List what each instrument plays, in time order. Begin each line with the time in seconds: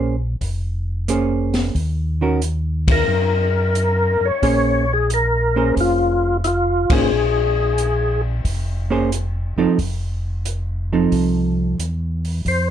Already playing: tonewheel organ A#1, hollow-body jazz guitar A#3 C#4 G#4 C5
0.41 tonewheel organ F1, kick, open hi-hat
1.08 hollow-body jazz guitar A#3 C#4 G#4 C5, closed hi-hat
1.54 snare, open hi-hat
1.75 tonewheel organ D#2, kick, open hi-hat
2.21 hollow-body jazz guitar D#3 C#4 F#4 A#4
2.42 closed hi-hat
2.88 kick, ride
2.92 tonewheel organ A#4
3.08 tonewheel organ F#2
3.75 closed hi-hat
4.21 tonewheel organ F#2
4.25 tonewheel organ C#5
4.42 tonewheel organ A#1, hollow-body jazz guitar A#3 C#4 G#4 C5, kick, open hi-hat
4.93 tonewheel organ G#4
5.10 tonewheel organ A#4, closed hi-hat
5.56 hollow-body jazz guitar A#3 C#4 G#4 C5
5.76 tonewheel organ F1, kick, open hi-hat
5.81 tonewheel organ F4
6.44 tonewheel organ E4 F4, closed hi-hat
6.90 tonewheel organ G#1 G#4, hollow-body jazz guitar A#3 C#4 G#4 C5, kick, ride
7.11 tonewheel organ A#1
7.78 closed hi-hat
8.44 tonewheel organ F1, kick, open hi-hat
8.90 hollow-body jazz guitar A#3 C#4 G#4 C5
9.12 closed hi-hat
9.56 tonewheel organ F1, hollow-body jazz guitar F3 C4 D#4 A4
9.78 tonewheel organ F1, kick, open hi-hat
10.45 closed hi-hat
10.93 hollow-body jazz guitar F3 C4 D#4 A4
11.12 tonewheel organ C2, kick, open hi-hat
11.78 tonewheel organ E2, closed hi-hat
12.25 open hi-hat
12.45 tonewheel organ F2 C5, kick, open hi-hat